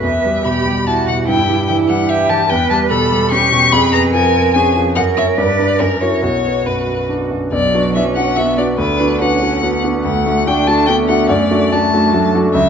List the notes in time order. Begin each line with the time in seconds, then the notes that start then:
Already playing: B4
0.03 E2 E5
0.25 G3
0.45 B2 G4 B5
0.66 G3
0.87 E4 F#4 A5
1.08 B2 F#5
1.28 G2 E4 G5
1.48 G3
1.68 E3 E4 G5
1.89 G3 F#5
2.09 E4 G4 E5
2.29 E3 A5
2.50 E2 B4 G5
2.70 G3 A5
2.90 B2 A4 B5
3.12 G3
3.31 C#4 G4 C#6
3.52 B2
3.72 F2 G#4 B5
3.93 B3 A#5
4.13 F3 A#4 G#5
4.35 B3
4.54 C#4 G#4 G#5
4.76 F3
4.95 F#2 A#4 F#5
5.17 C#4 C#5 E5
5.38 G2 B4 D5
5.59 D4 B4
5.79 F#2 A#4
6.01 E4 F#4 C#5
6.22 B1 F#4 C#5
6.46 B3
6.66 F#2 B4
6.87 B3
7.09 D4
7.31 F#2
7.52 B1 F#3 D5
7.74 B3 D4 F#4
7.95 B3 C#4 D4 F#4 E5
8.16 B3 D4 F#4 F#5
8.36 B3 D4 F#4 E5
8.58 B3 D4 F#4 D5
8.78 D2 D4 B4
8.99 B3 D4 F#4
9.21 B3 C#4 D4 F#4 F#5
9.42 B3 D4 F#4
9.63 B3 D4 F#4
9.84 B3 D4 F#4
10.05 D2 A3 F#5
10.26 A3 D4 F#4
10.46 A3 D4 F#4 G5
10.67 A3 D4 F#4 A5
10.87 A3 B3 D4 F#4 G5
11.08 A3 D4 F#4 F#5
11.29 F#2 A3 D5
11.51 A3 D4 F#4
11.72 A3 D4 F#4 A5
11.93 A3 D4 F#4
12.13 F#3 A3 D4 F#4
12.34 A3 D4 F#4
12.53 C#2 F#3 E5